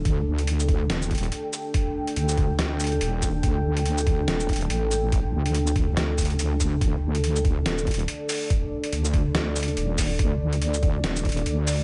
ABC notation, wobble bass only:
X:1
M:4/4
L:1/8
Q:"Swing 16ths" 1/4=142
K:Cdor
V:1 name="Wobble bass" clef=bass
D,,4 E,,,2 z2 | z2 D,,4 E,,,2 | D,,4 E,,,2 A,,,2- | A,,, D,,3 D,,4 |
D,,4 E,,,2 z2 | z2 D,,4 E,,,2 | D,,4 E,,,2 D,,2 |]